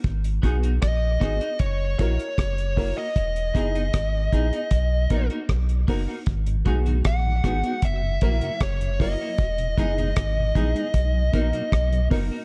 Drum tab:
HH |xxxxx-xxx-xxxxo-|xxxxx-xxx-xxxxo-|xxxxx-xxx-xxxxo-|xxxxx-xxx-xxxxo-|
SD |----r-r-----r---|----r-------r---|----r-r-----r---|----r-------r---|
BD |o-o-o-o-o-o-o-o-|o-o-o-o-o-o-o-o-|o-o-o-o-o-o-o-o-|o-o-o-o-o-o-o-o-|